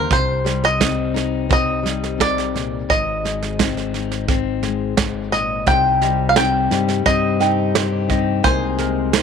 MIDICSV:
0, 0, Header, 1, 7, 480
1, 0, Start_track
1, 0, Tempo, 694444
1, 73, Time_signature, 4, 2, 24, 8
1, 6376, End_track
2, 0, Start_track
2, 0, Title_t, "Five-string banjo"
2, 0, Program_c, 0, 105
2, 0, Note_on_c, 0, 70, 72
2, 80, Note_off_c, 0, 70, 0
2, 87, Note_on_c, 0, 72, 86
2, 445, Note_off_c, 0, 72, 0
2, 448, Note_on_c, 0, 75, 81
2, 1046, Note_off_c, 0, 75, 0
2, 1054, Note_on_c, 0, 75, 83
2, 1526, Note_off_c, 0, 75, 0
2, 1529, Note_on_c, 0, 74, 78
2, 2002, Note_off_c, 0, 74, 0
2, 2004, Note_on_c, 0, 75, 82
2, 3416, Note_off_c, 0, 75, 0
2, 3680, Note_on_c, 0, 75, 71
2, 3920, Note_off_c, 0, 75, 0
2, 3923, Note_on_c, 0, 79, 97
2, 4346, Note_off_c, 0, 79, 0
2, 4349, Note_on_c, 0, 77, 67
2, 4399, Note_off_c, 0, 77, 0
2, 4405, Note_on_c, 0, 79, 79
2, 4876, Note_off_c, 0, 79, 0
2, 4879, Note_on_c, 0, 75, 89
2, 5835, Note_on_c, 0, 72, 85
2, 5864, Note_off_c, 0, 75, 0
2, 6376, Note_off_c, 0, 72, 0
2, 6376, End_track
3, 0, Start_track
3, 0, Title_t, "Ukulele"
3, 0, Program_c, 1, 24
3, 3921, Note_on_c, 1, 72, 72
3, 4161, Note_on_c, 1, 75, 59
3, 4403, Note_on_c, 1, 79, 69
3, 4632, Note_off_c, 1, 72, 0
3, 4641, Note_on_c, 1, 72, 64
3, 4870, Note_off_c, 1, 75, 0
3, 4878, Note_on_c, 1, 75, 76
3, 5111, Note_off_c, 1, 79, 0
3, 5119, Note_on_c, 1, 79, 72
3, 5348, Note_off_c, 1, 72, 0
3, 5356, Note_on_c, 1, 72, 65
3, 5590, Note_off_c, 1, 75, 0
3, 5598, Note_on_c, 1, 75, 70
3, 5832, Note_off_c, 1, 79, 0
3, 5834, Note_off_c, 1, 72, 0
3, 5834, Note_on_c, 1, 80, 86
3, 5836, Note_off_c, 1, 75, 0
3, 6073, Note_on_c, 1, 70, 61
3, 6315, Note_on_c, 1, 72, 73
3, 6376, Note_off_c, 1, 70, 0
3, 6376, Note_off_c, 1, 72, 0
3, 6376, Note_off_c, 1, 80, 0
3, 6376, End_track
4, 0, Start_track
4, 0, Title_t, "Steel-string acoustic guitar"
4, 0, Program_c, 2, 25
4, 3920, Note_on_c, 2, 48, 57
4, 3923, Note_on_c, 2, 55, 58
4, 3927, Note_on_c, 2, 60, 68
4, 3929, Note_on_c, 2, 63, 65
4, 3935, Note_on_c, 2, 67, 73
4, 4388, Note_off_c, 2, 55, 0
4, 4397, Note_on_c, 2, 55, 50
4, 4400, Note_off_c, 2, 48, 0
4, 4401, Note_off_c, 2, 60, 0
4, 4404, Note_on_c, 2, 60, 47
4, 4407, Note_off_c, 2, 63, 0
4, 4407, Note_off_c, 2, 67, 0
4, 4410, Note_on_c, 2, 63, 54
4, 4417, Note_on_c, 2, 67, 55
4, 4625, Note_off_c, 2, 67, 0
4, 4633, Note_on_c, 2, 67, 41
4, 4638, Note_off_c, 2, 55, 0
4, 4638, Note_off_c, 2, 63, 0
4, 4641, Note_off_c, 2, 60, 0
4, 4647, Note_on_c, 2, 63, 36
4, 4654, Note_on_c, 2, 60, 36
4, 4874, Note_on_c, 2, 55, 57
4, 4875, Note_off_c, 2, 60, 0
4, 4876, Note_off_c, 2, 67, 0
4, 4881, Note_off_c, 2, 63, 0
4, 4883, Note_on_c, 2, 60, 51
4, 4889, Note_on_c, 2, 63, 58
4, 4895, Note_on_c, 2, 67, 55
4, 5102, Note_off_c, 2, 67, 0
4, 5110, Note_on_c, 2, 67, 44
4, 5114, Note_off_c, 2, 63, 0
4, 5116, Note_off_c, 2, 55, 0
4, 5120, Note_off_c, 2, 60, 0
4, 5122, Note_on_c, 2, 63, 34
4, 5132, Note_on_c, 2, 60, 36
4, 5581, Note_off_c, 2, 67, 0
4, 5589, Note_on_c, 2, 67, 52
4, 5599, Note_off_c, 2, 63, 0
4, 5601, Note_on_c, 2, 63, 46
4, 5607, Note_off_c, 2, 60, 0
4, 5609, Note_on_c, 2, 60, 39
4, 5828, Note_on_c, 2, 48, 66
4, 5831, Note_off_c, 2, 67, 0
4, 5833, Note_off_c, 2, 63, 0
4, 5834, Note_on_c, 2, 56, 67
4, 5835, Note_off_c, 2, 60, 0
4, 5838, Note_on_c, 2, 58, 73
4, 5842, Note_on_c, 2, 63, 76
4, 5842, Note_on_c, 2, 68, 74
4, 6298, Note_off_c, 2, 56, 0
4, 6304, Note_off_c, 2, 58, 0
4, 6306, Note_on_c, 2, 56, 52
4, 6308, Note_off_c, 2, 48, 0
4, 6312, Note_on_c, 2, 58, 56
4, 6316, Note_off_c, 2, 68, 0
4, 6319, Note_off_c, 2, 63, 0
4, 6322, Note_on_c, 2, 63, 55
4, 6326, Note_on_c, 2, 68, 58
4, 6376, Note_off_c, 2, 56, 0
4, 6376, Note_off_c, 2, 58, 0
4, 6376, Note_off_c, 2, 63, 0
4, 6376, Note_off_c, 2, 68, 0
4, 6376, End_track
5, 0, Start_track
5, 0, Title_t, "Steel-string acoustic guitar"
5, 0, Program_c, 3, 25
5, 0, Note_on_c, 3, 58, 52
5, 68, Note_on_c, 3, 48, 59
5, 76, Note_off_c, 3, 58, 0
5, 308, Note_on_c, 3, 55, 52
5, 554, Note_on_c, 3, 60, 54
5, 790, Note_on_c, 3, 63, 52
5, 1030, Note_off_c, 3, 60, 0
5, 1033, Note_on_c, 3, 60, 53
5, 1258, Note_off_c, 3, 55, 0
5, 1266, Note_on_c, 3, 55, 51
5, 1498, Note_off_c, 3, 48, 0
5, 1507, Note_on_c, 3, 48, 50
5, 1753, Note_off_c, 3, 48, 0
5, 1759, Note_on_c, 3, 46, 52
5, 1965, Note_off_c, 3, 55, 0
5, 1993, Note_off_c, 3, 46, 0
5, 1996, Note_on_c, 3, 44, 60
5, 2243, Note_on_c, 3, 56, 54
5, 2480, Note_off_c, 3, 60, 0
5, 2483, Note_on_c, 3, 60, 52
5, 2723, Note_off_c, 3, 63, 0
5, 2726, Note_on_c, 3, 63, 44
5, 2957, Note_off_c, 3, 60, 0
5, 2965, Note_on_c, 3, 60, 50
5, 3191, Note_off_c, 3, 56, 0
5, 3200, Note_on_c, 3, 56, 51
5, 3434, Note_off_c, 3, 44, 0
5, 3443, Note_on_c, 3, 44, 47
5, 3676, Note_off_c, 3, 44, 0
5, 3679, Note_on_c, 3, 46, 49
5, 3892, Note_off_c, 3, 56, 0
5, 3894, Note_off_c, 3, 60, 0
5, 3895, Note_off_c, 3, 63, 0
5, 3920, Note_off_c, 3, 46, 0
5, 3921, Note_on_c, 3, 48, 61
5, 4161, Note_on_c, 3, 55, 56
5, 4404, Note_on_c, 3, 60, 53
5, 4631, Note_off_c, 3, 55, 0
5, 4639, Note_on_c, 3, 55, 53
5, 4884, Note_off_c, 3, 60, 0
5, 4887, Note_on_c, 3, 60, 52
5, 5121, Note_on_c, 3, 63, 54
5, 5361, Note_on_c, 3, 67, 50
5, 5601, Note_off_c, 3, 60, 0
5, 5603, Note_on_c, 3, 60, 51
5, 5806, Note_off_c, 3, 55, 0
5, 5837, Note_off_c, 3, 48, 0
5, 5837, Note_off_c, 3, 67, 0
5, 5840, Note_on_c, 3, 48, 65
5, 6077, Note_on_c, 3, 56, 59
5, 6317, Note_off_c, 3, 60, 0
5, 6320, Note_on_c, 3, 58, 54
5, 6376, Note_off_c, 3, 48, 0
5, 6376, Note_off_c, 3, 56, 0
5, 6376, Note_off_c, 3, 58, 0
5, 6376, Note_off_c, 3, 63, 0
5, 6376, End_track
6, 0, Start_track
6, 0, Title_t, "Fingered electric bass"
6, 0, Program_c, 4, 33
6, 76, Note_on_c, 4, 36, 65
6, 1973, Note_off_c, 4, 36, 0
6, 2003, Note_on_c, 4, 32, 68
6, 3895, Note_off_c, 4, 32, 0
6, 3920, Note_on_c, 4, 36, 80
6, 4611, Note_off_c, 4, 36, 0
6, 4641, Note_on_c, 4, 43, 70
6, 4862, Note_off_c, 4, 43, 0
6, 4878, Note_on_c, 4, 43, 79
6, 5807, Note_off_c, 4, 43, 0
6, 5836, Note_on_c, 4, 36, 85
6, 6376, Note_off_c, 4, 36, 0
6, 6376, End_track
7, 0, Start_track
7, 0, Title_t, "Drums"
7, 72, Note_on_c, 9, 38, 26
7, 74, Note_on_c, 9, 36, 91
7, 141, Note_off_c, 9, 38, 0
7, 143, Note_off_c, 9, 36, 0
7, 318, Note_on_c, 9, 38, 29
7, 387, Note_off_c, 9, 38, 0
7, 439, Note_on_c, 9, 38, 26
7, 508, Note_off_c, 9, 38, 0
7, 558, Note_on_c, 9, 36, 66
7, 559, Note_on_c, 9, 38, 83
7, 627, Note_off_c, 9, 36, 0
7, 629, Note_off_c, 9, 38, 0
7, 802, Note_on_c, 9, 38, 28
7, 871, Note_off_c, 9, 38, 0
7, 1041, Note_on_c, 9, 36, 94
7, 1042, Note_on_c, 9, 38, 28
7, 1110, Note_off_c, 9, 36, 0
7, 1111, Note_off_c, 9, 38, 0
7, 1283, Note_on_c, 9, 38, 28
7, 1352, Note_off_c, 9, 38, 0
7, 1407, Note_on_c, 9, 38, 24
7, 1476, Note_off_c, 9, 38, 0
7, 1522, Note_on_c, 9, 36, 61
7, 1525, Note_on_c, 9, 38, 82
7, 1591, Note_off_c, 9, 36, 0
7, 1594, Note_off_c, 9, 38, 0
7, 1645, Note_on_c, 9, 38, 26
7, 1714, Note_off_c, 9, 38, 0
7, 1766, Note_on_c, 9, 38, 28
7, 1835, Note_off_c, 9, 38, 0
7, 2004, Note_on_c, 9, 36, 83
7, 2005, Note_on_c, 9, 38, 24
7, 2073, Note_off_c, 9, 36, 0
7, 2074, Note_off_c, 9, 38, 0
7, 2248, Note_on_c, 9, 38, 27
7, 2317, Note_off_c, 9, 38, 0
7, 2367, Note_on_c, 9, 38, 25
7, 2436, Note_off_c, 9, 38, 0
7, 2484, Note_on_c, 9, 36, 68
7, 2486, Note_on_c, 9, 38, 83
7, 2553, Note_off_c, 9, 36, 0
7, 2556, Note_off_c, 9, 38, 0
7, 2606, Note_on_c, 9, 38, 24
7, 2675, Note_off_c, 9, 38, 0
7, 2724, Note_on_c, 9, 38, 27
7, 2794, Note_off_c, 9, 38, 0
7, 2844, Note_on_c, 9, 38, 26
7, 2913, Note_off_c, 9, 38, 0
7, 2960, Note_on_c, 9, 38, 29
7, 2962, Note_on_c, 9, 36, 94
7, 3029, Note_off_c, 9, 38, 0
7, 3031, Note_off_c, 9, 36, 0
7, 3199, Note_on_c, 9, 38, 27
7, 3268, Note_off_c, 9, 38, 0
7, 3438, Note_on_c, 9, 38, 81
7, 3441, Note_on_c, 9, 36, 65
7, 3507, Note_off_c, 9, 38, 0
7, 3510, Note_off_c, 9, 36, 0
7, 3679, Note_on_c, 9, 38, 28
7, 3748, Note_off_c, 9, 38, 0
7, 3915, Note_on_c, 9, 38, 29
7, 3920, Note_on_c, 9, 36, 89
7, 3984, Note_off_c, 9, 38, 0
7, 3989, Note_off_c, 9, 36, 0
7, 4158, Note_on_c, 9, 38, 26
7, 4227, Note_off_c, 9, 38, 0
7, 4396, Note_on_c, 9, 38, 94
7, 4465, Note_off_c, 9, 38, 0
7, 4638, Note_on_c, 9, 38, 32
7, 4707, Note_off_c, 9, 38, 0
7, 4758, Note_on_c, 9, 38, 28
7, 4827, Note_off_c, 9, 38, 0
7, 4878, Note_on_c, 9, 38, 29
7, 4879, Note_on_c, 9, 36, 76
7, 4947, Note_off_c, 9, 38, 0
7, 4948, Note_off_c, 9, 36, 0
7, 5118, Note_on_c, 9, 38, 30
7, 5187, Note_off_c, 9, 38, 0
7, 5357, Note_on_c, 9, 38, 82
7, 5427, Note_off_c, 9, 38, 0
7, 5595, Note_on_c, 9, 38, 30
7, 5597, Note_on_c, 9, 36, 66
7, 5664, Note_off_c, 9, 38, 0
7, 5666, Note_off_c, 9, 36, 0
7, 5832, Note_on_c, 9, 38, 28
7, 5836, Note_on_c, 9, 36, 98
7, 5901, Note_off_c, 9, 38, 0
7, 5905, Note_off_c, 9, 36, 0
7, 6072, Note_on_c, 9, 38, 29
7, 6141, Note_off_c, 9, 38, 0
7, 6313, Note_on_c, 9, 38, 92
7, 6376, Note_off_c, 9, 38, 0
7, 6376, End_track
0, 0, End_of_file